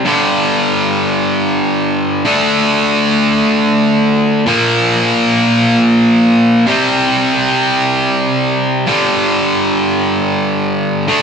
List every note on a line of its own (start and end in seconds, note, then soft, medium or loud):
0.05 2.24 G2 medium
0.05 2.24 D3 medium
0.05 2.25 G3 medium
2.25 4.44 D3 medium
2.25 4.44 A3 medium
2.25 4.45 D4 medium
4.46 6.65 A#2 medium
4.46 6.65 F3 medium
4.46 6.66 A#3 medium
6.66 8.85 C3 medium
6.66 8.86 G3 medium
6.66 8.86 C4 medium
8.87 11.06 G2 medium
8.87 11.07 D3 medium
8.87 11.07 G3 medium
11.08 11.22 D3 medium
11.08 11.22 A3 medium
11.08 11.22 D4 medium